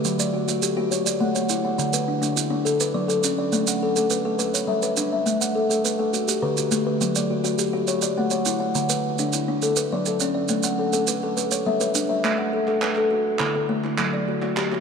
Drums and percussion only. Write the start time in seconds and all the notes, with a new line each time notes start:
0.05 maracas
0.19 maracas
0.48 maracas
0.63 maracas
0.92 maracas
1.07 maracas
1.35 maracas
1.49 maracas
1.79 maracas
1.93 maracas
2.23 maracas
2.37 maracas
2.66 maracas
2.80 maracas
3.10 maracas
3.23 maracas
3.53 maracas
3.67 maracas
3.96 maracas
4.10 maracas
4.39 maracas
4.54 maracas
4.82 maracas
4.97 maracas
5.27 maracas
5.41 maracas
5.71 maracas
5.85 maracas
6.14 maracas
6.28 maracas
6.57 maracas
6.71 maracas
7.01 maracas
7.15 maracas
7.45 maracas
7.58 maracas
7.88 maracas
8.02 maracas
8.31 maracas
8.45 maracas
8.75 maracas
8.89 maracas
9.18 maracas
9.33 maracas
9.62 maracas
9.76 maracas
10.06 maracas
10.20 maracas
10.48 maracas
10.63 maracas
10.93 maracas
11.07 maracas
11.37 maracas
11.51 maracas
11.81 maracas
11.95 maracas
12.24 clap
12.68 clap
12.82 clap
12.95 clap
13.39 clap
13.84 clap
13.98 clap
14.42 clap
14.57 clap
14.72 clap